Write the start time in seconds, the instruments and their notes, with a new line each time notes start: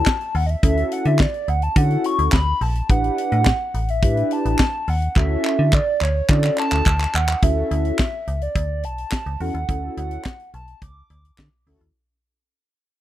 Already playing: soft synth lead A5
0.06 kick, snare, clap
0.21 closed hi-hat
0.35 fm bass D#2, soft synth lead F#5, open hi-hat
0.46 soft synth lead D#5 E5, closed hi-hat
0.63 fm bass D2, analog polysynth C#4 E4 F#4 A4, soft synth lead E5, kick, closed hi-hat
0.77 closed hi-hat
0.92 soft synth lead F#5, closed hi-hat
1.05 fm bass D3, soft synth lead E5, closed hi-hat
1.19 soft synth lead D5, kick, snare, clap
1.34 closed hi-hat
1.48 fm bass D2, soft synth lead F#5, closed hi-hat
1.62 soft synth lead A5, closed hi-hat
1.76 fm bass D3, analog polysynth C#4 E4 F#4 A4, soft synth lead F#5, kick, closed hi-hat
1.91 closed hi-hat
2.04 soft synth lead C#6, closed hi-hat
2.19 fm bass D2, closed hi-hat
2.32 fm bass D2, soft synth lead B5, kick, snare, clap
2.61 fm bass A#1, soft synth lead A5, open hi-hat
2.75 closed hi-hat
2.89 fm bass A1, analog polysynth D4 E4 G4 B4, soft synth lead F#5, kick, closed hi-hat
3.04 closed hi-hat
3.18 closed hi-hat
3.32 fm bass A2, closed hi-hat
3.46 kick, snare, clap
3.74 fm bass A1, closed hi-hat
3.88 soft synth lead E5, closed hi-hat
4.03 fm bass A2, analog polysynth D4 E4 G4 B4, kick, closed hi-hat
4.17 closed hi-hat
4.31 soft synth lead A5, closed hi-hat
4.45 fm bass A1, closed hi-hat
4.59 kick, snare, clap
4.88 fm bass D#2, soft synth lead F#5, open hi-hat
5.02 closed hi-hat
5.16 fm bass D2, analog polysynth C#4 E4 F#4 A4, soft synth lead E5, kick, clap
5.45 clap
5.59 fm bass D3
5.73 soft synth lead D5, kick, clap
6.01 fm bass D2, soft synth lead C#5, clap
6.29 fm bass D3, analog polysynth C#4 E4 F#4 A4, soft synth lead D5, kick, clap
6.44 clap
6.58 soft synth lead A5, clap
6.72 fm bass D2, clap
6.86 fm bass D2, kick, clap
7.01 clap
7.15 fm bass D#2, soft synth lead F#5, clap
7.29 clap
7.42 fm bass D2, analog polysynth C#4 E4 F#4 A4, soft synth lead E5, kick, closed hi-hat
7.71 fm bass D2, closed hi-hat
7.85 closed hi-hat
7.99 kick, snare, clap, closed hi-hat
8.28 fm bass C#2, closed hi-hat
8.41 soft synth lead D5, closed hi-hat
8.55 fm bass D2, kick, closed hi-hat
8.83 fm bass B1, soft synth lead A5, closed hi-hat
8.98 closed hi-hat
9.11 kick, snare, clap, closed hi-hat
9.26 fm bass C#2, closed hi-hat
9.40 fm bass E2, analog polysynth C#4 E4 F#4 A4, soft synth lead F#5, open hi-hat
9.54 fm bass D#2, closed hi-hat
9.68 fm bass D2, analog polysynth C#4 E4 F#4 A4, kick, closed hi-hat
9.97 fm bass D2, soft synth lead F#5, closed hi-hat
10.11 closed hi-hat
10.25 kick, snare, clap, closed hi-hat
10.40 closed hi-hat
10.54 fm bass B1, soft synth lead A5, closed hi-hat
10.68 closed hi-hat
10.82 fm bass C#2, soft synth lead D6, kick, closed hi-hat
11.10 fm bass D2, closed hi-hat
11.25 closed hi-hat
11.38 fm bass D3, kick, snare, clap, closed hi-hat
11.66 fm bass D2, analog polysynth C#4 E4 F#4 A4, open hi-hat
11.81 fm bass D#2, closed hi-hat